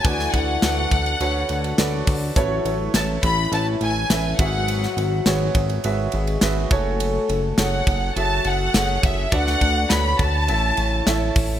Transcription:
<<
  \new Staff \with { instrumentName = "Violin section" } { \time 4/4 \key a \major \tempo 4 = 104 gis''8 fis''2. r8 | r4 a''8 b''8 a''8 gis''4 fis''8~ | fis''8 r2. r8 | r4 fis''4 a''8 fis''4 e''8 |
fis''4 b''8 a''2 r8 | }
  \new Staff \with { instrumentName = "Grand piano" } { \time 4/4 \key a \major <fis' a' b' d''>4 <fis' a' b' d''>4 <fis' a' b' cis''>4 <fis' a' b' d''>4 | <e' a' b' cis''>4 <e' a' b' cis''>4 <e' a' b' cis''>4 <e' a' b' e''>8 <fis' gis' b' e''>8~ | <fis' gis' b' e''>8 r8 <fis' gis' b' cis''>4 <fis' gis' b' e''>4 <fis' gis' b' e''>8 <fis' a' cis'' gis''>8~ | <fis' a' cis'' gis''>8 r8 <fis' gis' a' cis''>4 <fis' gis' a' e''>4 <fis' gis' a' cis''>4 |
<fis' a' b' d''>4 <fis' a' b' cis''>4 <e' a' cis'' e''>4 <e' a' cis'' e''>4 | }
  \new Staff \with { instrumentName = "Grand piano" } { \clef bass \time 4/4 \key a \major d4. r2 r8 | a,4. r2 gis,8~ | gis,4 r2. | r1 |
d4. r8 a,4. r8 | }
  \new Staff \with { instrumentName = "French horn section" } { \time 4/4 \key a \major <e e'>2 r8 <d d'>4 r8 | <fis fis'>4 r8 <e e'>4. r8 <fis fis'>8~ | <fis fis'>2 r8 <gis gis'>8 r8 <a a'>8~ | <a a'>4. r8 <fis fis'>4. r8 |
<d d'>4. r8 <cis cis'>4. r8 | }
  \new Staff \with { instrumentName = "Analog synth bass" } { \clef bass \time 4/4 \key a \major d,8 d,8 d,8 d,8 d,8 d,8 d,8 d,8 | a,,8 a,,8 a,,8 a,,8 a,,8 a,,8 a,,8 gis,,8~ | gis,,8 gis,,8 gis,,8 gis,,8 gis,,8 gis,,8 gis,,8 fis,,8~ | fis,,8 fis,,8 fis,,8 fis,,8 fis,,8 fis,,8 fis,,8 fis,,8 |
d,8 d,8 d,8 d,8 a,,8 a,,8 a,,8 a,,8 | }
  \new DrumStaff \with { instrumentName = "Drums" } \drummode { \time 4/4 <bd cymr>16 sn16 <bd cymr>8 <cymr sn>8 <bd cymr>16 cymr16 cymr8 cymr16 cymr16 <cymr sn>8 <hho bd cymr>8 | <hhp bd cymr>8 cymr8 <cymr sn>8 <bd cymr>8 cymr8 cymr8 <cymr sn>8 <bd cymr>8 | cymr16 sn16 cymr8 <cymr sn>8 <bd cymr>16 cymr16 cymr8 cymr16 cymr16 <cymr sn>8 <bd cymr>8 | cymr8 cymr8 <cymr sn>8 <bd cymr>8 cymr8 cymr8 <cymr sn>8 <bd cymr>8 |
<bd cymr>16 sn16 <bd cymr>8 <cymr sn>8 <bd cymr>8 cymr8 cymr8 <cymr sn>8 <hho bd cymr>8 | }
>>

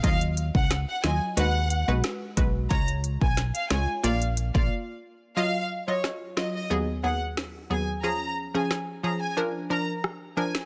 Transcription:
<<
  \new Staff \with { instrumentName = "Violin section" } { \time 4/4 \key ees \minor \tempo 4 = 90 f''16 r8 ges''16 r16 ges''16 aes''16 r16 ges''8. r4 r16 | bes''16 r8 aes''16 r16 f''16 aes''16 r16 f''16 r8 f''16 r4 | f''8 r16 des''16 r8 ees''16 ees''16 r8 ges''16 r8. aes''16 r16 | bes''8 r16 aes''16 r8 bes''16 aes''16 r8 bes''16 r8. aes''16 r16 | }
  \new Staff \with { instrumentName = "Synth pluck" } { \time 4/4 \key ees \minor <ges f' ees''>4 r8 <ges f' ees''>16 r16 <aes ges' ces''>16 r8 <aes ges' ces''>8. <aes ges' ces''>8 | <aes f' des''>4 r8 <aes f' des''>16 r16 <bes f' d''>16 r8 <bes f' d''>16 r4 | <ges f' ees''>16 r8 <ges f' ees''>16 r8 <ges f' ees''>16 r16 <ees, ges ces' aes'>8 <ees, ges ces' aes'>16 r8. <ees, ges ces' aes'>16 r16 | <f des' aes'>16 r8 <f des' aes'>16 r8 <f des' aes'>16 r16 <f d' bes'>8 <f d' bes'>16 r8. <f d' bes'>16 r16 | }
  \new Staff \with { instrumentName = "Analog synth bass" } { \clef bass \time 4/4 \key ees \minor ees,8. des,8 r16 ees,16 r16 ees,8. ces,16 r8 ces,8 | des,8. ces,8 r16 des,16 r16 bes,,8. bes,,16 r4 | r1 | r1 | }
  \new DrumStaff \with { instrumentName = "Drums" } \drummode { \time 4/4 <hh bd>16 hh16 hh16 bd16 <hh ss sn>8 <hh sn>8 hh8 hh8 <hh ss sn>8 <hh bd>8 | <hh bd>16 hh16 hh16 bd16 <hh sn>16 hh16 <hh sn>8 hh16 hh16 hh16 bd16 r4 | r4 <ss sn>8 sn8 r4 <ss sn>4 | r4 <ss sn>4 r4 ss8. sn16 | }
>>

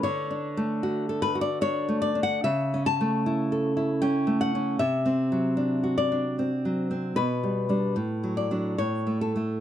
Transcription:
\new Staff \with { instrumentName = "Nylon-string guitar" } { \time 3/4 \key d \major \tempo 4 = 76 << { cis''4. b'16 d''16 cis''8 d''16 fis''16 | e''8 a''4. g''8 fis''8 | e''4. d''8 r4 | b'4. d''8 cis''8 a'8 | } \\ { \tuplet 3/2 { d8 d'8 a8 fis'8 a'8 fis'8 d'8 a8 d'8 } | \tuplet 3/2 { cis8 cis'8 a8 e'8 a'8 e'8 cis'8 a8 cis'8 } | \tuplet 3/2 { c8 c'8 fis8 d'8 fis'8 d'8 c'8 fis8 c'8 } | \tuplet 3/2 { b,8 g8 <g d'>8 a,8 fis8 <fis d'>8 a,8 a8 <a e'>8 } | } >> }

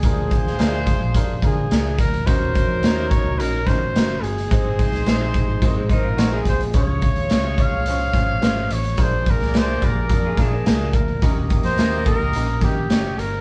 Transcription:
<<
  \new Staff \with { instrumentName = "Trumpet" } { \time 4/4 \key bes \minor \tempo 4 = 107 aes'2 r8 aes'4 bes'8 | c''4. des''8 bes'8 c''4 aes'8~ | aes'2 r8 bes'4 c''8 | des''4. f''2 des''8 |
c''8 bes'8 c''8 bes'4 aes'4 bes'8~ | bes'16 r8 c''8. bes'4 g'4 bes'8 | }
  \new Staff \with { instrumentName = "Grand piano" } { \time 4/4 \key bes \minor <d' f' aes' bes'>8 r8 <d' f' aes' bes'>8 r8 <d' f' aes' bes'>8 <d' f' aes' bes'>8 <d' f' aes' bes'>8 r8 | <des' ees' ges' bes'>8 r8 <des' ees' ges' bes'>8 r8 <des' ees' ges' bes'>8 <des' ees' ges' bes'>8 <des' ees' ges' bes'>8 r8 | <c' ees' aes' c''>8 r8 <c' ees' aes' c''>8 r8 <c' ees' aes' c''>8 <c' ees' aes' c''>8 <c' ees' aes' c''>8 r8 | <des' f' aes' des''>8 r8 <des' f' aes' des''>8 r8 <des' f' aes' c''>8 <des' f' aes' c''>8 <des' f' aes' c''>8 r8 |
<d' f' aes' bes'>8 r8 <d' f' aes' bes'>8 r8 <d' f' aes' bes'>8 <d' f' aes' bes'>8 <d' f' aes' bes'>8 r8 | <des' ees' g' bes'>8 r8 <des' ees' g' bes'>8 r8 <des' ees' g' bes'>8 <des' ees' g' bes'>8 <des' ees' g' des''>8 r8 | }
  \new Staff \with { instrumentName = "Horn section" } { \time 4/4 \key bes \minor <aes f' c''>2.~ <aes f' c''>8 r8 | <ges ees' bes'>2.~ <ges ees' bes'>8 r8 | <aes ees' c''>2.~ <aes ees' c''>8 r8 | <aes f' des''>2.~ <aes f' des''>8 r8 |
<bes aes' d''>2.~ <bes aes' d''>8 r8 | <bes g' ees''>2.~ <bes g' ees''>8 r8 | }
  \new Staff \with { instrumentName = "Clean electric guitar" } { \time 4/4 \key bes \minor r1 | r1 | r2 <ges bes>16 <aes c'>16 <c' ees'>16 f'16 <ees' ges'>16 <f' aes'>8. | r1 |
r2 r16 <f' aes'>16 <d' f'>16 <bes d'>4~ <bes d'>16 | r1 | }
  \new Staff \with { instrumentName = "Fingered electric bass" } { \clef bass \time 4/4 \key bes \minor d,8. ees,16 d,8. bes,,16 f,,8 d8 des,8 d,8 | r8. f,16 ees,8. des,16 bes,,8 ees8 ges,,8 g,,8 | aes,,8. c,16 bes,,8. aes,,16 aes,8 aes,,8 bes,,8 c,16 r16 | des,8. ees,16 des,8. c,8. aes,,8 aes,,8 a,,8 |
bes,,8. c,8. bes,,8 f,8 bes,8 des,8 d,8 | ees,8. f,16 ees,8. des,16 bes,,8 ees8 ges,,8 g,,8 | }
  \new DrumStaff \with { instrumentName = "Drums" } \drummode { \time 4/4 <hh bd>8 <hh bd>16 sn16 <hh sn>8 <hh bd>8 <hh bd>8 <hh bd>8 <hh sn>8 <hh bd>16 hh16 | <hh bd>8 <hh bd>8 <hh sn>8 <hh bd>8 hh8 <hh bd sn>8 <hh sn>8 hh16 hh16 | <hh bd>8 <hh bd>16 <hh sn>16 <hh sn>8 <hh bd>8 <hh bd>8 <hh bd>8 <hh sn>8 <hh bd>16 hh16 | <hh bd>8 <hh bd>16 hh16 <hh sn>8 <hh bd>8 hh8 <hh bd sn>8 <hh sn>8 hh16 hh16 |
<hh bd>8 <hh bd>16 <hh sn>16 <hh sn>8 <hh bd>8 <hh bd>8 <hh bd sn>8 <hh sn>8 <hh bd>16 hh16 | <hh bd>8 <hh bd>16 <hh sn>16 <hh sn>8 <hh bd>8 hh8 <hh bd sn>8 <hh sn>8 hh8 | }
>>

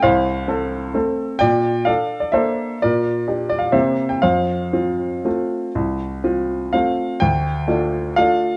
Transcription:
\new Staff \with { instrumentName = "Grand piano" } { \time 3/4 \key f \major \tempo 4 = 126 << { <c'' f''>2 r4 | <d'' g''>4 <d'' f''>8. d''16 <c'' e''>4 | <bes' d''>4. d''16 f''16 <c'' e''>8. g''16 | <c'' f''>2.~ |
<c'' f''>2 f''4 | \key d \minor g''2 f''4 | } \\ { c,4 <c' a'>4 <a c' a'>4 | bes,4 <d' a'>4 <bes d' a'>4 | bes,4 <d' g'>4 <c bes c' g'>4 | f,4 <c' f'>4 <a c' f'>4 |
c,4 <c' f'>4 <a c' f'>4 | d,4 <a d' f'>4 <a d' f'>4 | } >> }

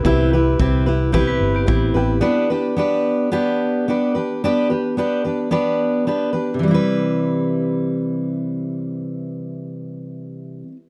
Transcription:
<<
  \new Staff \with { instrumentName = "Felt piano" } { \time 4/4 \key c \major \tempo 4 = 110 <b g' b' e''>2.~ <b g' b' e''>8 <c' g' b' g''>8 | r1 | r1 | r1 |
r1 | }
  \new Staff \with { instrumentName = "Steel-string acoustic guitar" } { \time 4/4 \key c \major <c' e' g' b'>8 <e' g' b'>8 <c' e' g' b'>8 <e' g' b'>8 <c' e' g' b'>4 <c' e' g' b'>8 <e' g' b'>8 | <b d' g' b'>8 <d' g' b'>8 <b d' g' b'>4 <b d' g' b'>4 <b d' g' b'>8 <d' g' b'>8 | <b d' g' b'>8 <d' g' b'>8 <b d' g' b'>8 <d' g' b'>8 <b d' g' b'>4 <b d' g' b'>8 <d' g' b'>8 | <c e g c' e' b'>1~ |
<c e g c' e' b'>1 | }
  \new Staff \with { instrumentName = "Vibraphone" } { \time 4/4 \key c \major r2 <b g'>16 b'8 <b g'>4~ <b g'>16 | r1 | r1 | r1 |
r1 | }
  \new Staff \with { instrumentName = "Fingered electric bass" } { \clef bass \time 4/4 \key c \major r4 c,4. g,,8 a,,8 a,,8 | r1 | r1 | r1 |
r1 | }
  \new DrumStaff \with { instrumentName = "Drums" } \drummode { \time 4/4 bd4 bd4 bd4 bd4 | r4 r4 r4 r4 | r4 r4 r4 r4 | r4 r4 r4 r4 |
r4 r4 r4 r4 | }
>>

